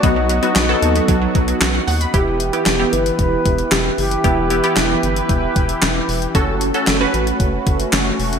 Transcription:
<<
  \new Staff \with { instrumentName = "Soft synth lead" } { \time 4/4 \key e \dorian \tempo 4 = 114 dis''2. r4 | g'4. b'8 b'4 g'8 g'8~ | g'4. r2 r8 | r1 | }
  \new Staff \with { instrumentName = "Analog polysynth" } { \time 4/4 \key e \dorian <fis b dis' fis'>8. <fis b dis' fis'>8 <fis b dis' a'>4.~ <fis b dis' a'>16 r4 | <b e' g'>8. <b e' g'>8 <b e' g'>4.~ <b e' g'>16 r4 | <b e' g'>8 <b e' g'>16 <b e' g'>4.~ <b e' g'>16 r4. | <cis' fis' a'>8. <cis' fis' a'>8 <cis' fis' b'>4.~ <cis' fis' b'>16 r4 | }
  \new Staff \with { instrumentName = "Analog synth pad" } { \time 4/4 \key e \dorian <b dis' fis'>1 | <e e' g' b'>1~ | <e e' g' b'>1 | <a cis' fis'>1 | }
  \new Staff \with { instrumentName = "Synth pluck" } { \clef bass \time 4/4 \key e \dorian fis16 fis16 fis16 fis16 r16 fis''16 dis'16 b16 fis16 fis16 fis16 fis16 fis'16 fis''16 fis''16 b''16 | r1 | r1 | r1 | }
  \new Staff \with { instrumentName = "Analog synth bass" } { \clef bass \time 4/4 \key e \dorian b,,4 b,,8 dis,8 b,,8 b,,8 b,,8 dis,8 | e,,4 e,,8 g,,8 e,,8 e,,8 e,,8 fis,,8 | e,,4 e,,8 g,,8 e,,8 e,,8 e,,8 e,,8 | fis,,4 fis,,8 a,,8 fis,,8 fis,,8 fis,,8 e,,8 | }
  \new DrumStaff \with { instrumentName = "Drums" } \drummode { \time 4/4 <hh bd>8 hh16 hh16 <hc hh sn>8 hh16 hh16 <hh bd>8 <hh bd>16 hh16 <hc hh sn>8 hho16 hh16 | <hh bd>8 hh16 hh16 <hc hh sn>8 hh16 hh16 <hh bd>8 <hh bd>16 hh16 <hc hh sn>8 hho16 hh16 | <hh bd>8 hh16 hh16 <hc hh sn>8 hh16 hh16 <hh bd>8 <hh bd>16 hh16 <hc hh sn>8 hho16 hh16 | <hh bd>8 hh16 hh16 <hc hh sn>8 hh16 hh16 <hh bd>8 <hh bd>16 hh16 <hc hh sn>8 hho16 hh16 | }
>>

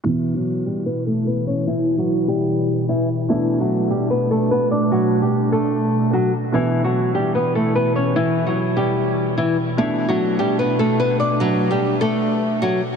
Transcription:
<<
  \new Staff \with { instrumentName = "Nylon-string guitar" } { \time 4/4 \key e \dorian \tempo 4 = 148 <e e'>8. <fis fis'>8. <g g'>8 <b b'>8 <a a'>8 <b b'>8 <cis' cis''>8 | <e e'>8. <fis fis'>8. <g g'>4. <e e'>8 r8 | <e e'>8. <fis fis'>8. <g g'>8 <b b'>8 <a a'>8 <b b'>8 <d' d''>8 | <fis fis'>8. <g g'>8. <a a'>4. <fis fis'>8 r8 |
<e e'>8. <fis fis'>8. <g g'>8 <b b'>8 <a a'>8 <b b'>8 <cis' cis''>8 | <e e'>8. <fis fis'>8. <g g'>4. <e e'>8 r8 | <e e'>8. <fis fis'>8. <g g'>8 <b b'>8 <a a'>8 <b b'>8 <d' d''>8 | <fis fis'>8. <g g'>8. <a a'>4. <fis fis'>8 r8 | }
  \new Staff \with { instrumentName = "Ambient pad" } { \time 4/4 \key e \dorian << { <e e'>1~ | <e e'>1 | <a d'>1~ | <a d'>1 |
<e e'>1~ | <e e'>1 | <a d'>1~ | <a d'>1 | } \\ { b,1~ | b,1~ | b,1~ | b,1~ |
b,1~ | b,1 | b,1~ | b,1 | } >> }
  \new Staff \with { instrumentName = "Grand piano" } { \clef bass \time 4/4 \key e \dorian <b, e e'>1~ | <b, e e'>1 | <b, a d'>1~ | <b, a d'>1 |
<b, e e'>1~ | <b, e e'>1 | <b, a d'>1~ | <b, a d'>1 | }
>>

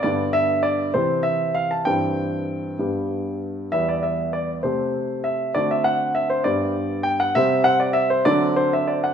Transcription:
<<
  \new Staff \with { instrumentName = "Grand piano" } { \time 6/8 \key c \major \tempo 4. = 66 d''8 e''8 d''8 c''8 e''8 f''16 a''16 | g''2~ g''8 r8 | \key d \mixolydian e''16 d''16 e''8 d''8 c''4 e''8 | d''16 e''16 fis''8 e''16 c''16 d''4 g''16 fis''16 |
e''8 fis''16 d''16 e''16 c''16 d''8 c''16 e''16 d''16 fis''16 | }
  \new Staff \with { instrumentName = "Grand piano" } { \time 6/8 \key c \major <g, d b g'>4. <c e c' g'>4. | <g, e c' g'>4. <g, g b g'>4. | \key d \mixolydian <e, g b g'>4. <c a c' g'>4. | <d a c' fis'>4. <g, g b g'>4. |
<c g c' g'>4. <d fis c' d'>4. | }
>>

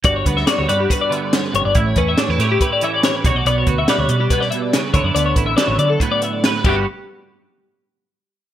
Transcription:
<<
  \new Staff \with { instrumentName = "Clean electric guitar" } { \time 4/4 \key g \lydian \tempo 4 = 141 d''16 cis''16 b'16 e''16 d''16 cis''16 d''16 g'16 b'16 d''16 e''16 d''16 cis''16 b'16 cis''16 d''16 | e''16 cis''16 b'16 e''16 cis''16 b'16 cis''16 g'16 b'16 d''16 e''16 d''16 cis''16 b'16 cis''16 d''16 | d''16 cis''16 b'16 e''16 d''16 cis''16 d''16 g'16 b'16 d''16 e''16 d''16 cis''16 b'16 cis''16 d''16 | d''16 cis''16 b'16 e''16 d''16 cis''16 d''16 a'16 b'16 d''16 e''16 d''16 cis''16 b'16 g'8 |
r1 | }
  \new Staff \with { instrumentName = "Clean electric guitar" } { \time 4/4 \key g \lydian << { fis'8 b8 fis'8 b'4 b4. | e'8 cis'8 d'16 e'16 g'4 cis'4 fis'8 | b8 fis'8 b'4 b4. e'8 | b8 e'8 a'4 b4 b'8 <g b fis' b'>8 |
r1 | } \\ { g,4. g4 d4 g,8 | a,4. a4 e4 b,8~ | b,4 g4 b,8 b,8 cis8 d8~ | d4 fis4 a,4. g,8 |
r1 | } >> }
  \new Staff \with { instrumentName = "Fingered electric bass" } { \clef bass \time 4/4 \key g \lydian g,,8 d,8 r16 d,16 g,8 r4. g,,16 g,,16 | a,,8 e,8 r16 e,16 a,8 r4. b,,16 b,,16 | b,,8 d,8 r16 d,16 b,8 r4. d,16 fis,16 | d,8 a,,8 r16 a,,16 d8 r4. g,,8 |
r1 | }
  \new DrumStaff \with { instrumentName = "Drums" } \drummode { \time 4/4 <hh bd>8 <hh bd>16 sn16 <hh sn>8 hh8 <hh bd>8 hh8 <hh sn>16 sn16 hh8 | <hh bd>8 <hh bd>8 <hh sn>16 sn16 <hh sn>8 <hh bd>8 hh8 <hh sn>8 <hh bd>8 | hh8 <hh bd>8 <hh sn>8 hh8 <hh bd>16 sn16 hh8 <hh sn>8 <hh bd>8 | hh8 <hh bd>8 <hh sn>8 hh8 <hh bd>8 hh8 <hh sn>16 sn16 <cymc bd>8 |
r4 r4 r4 r4 | }
>>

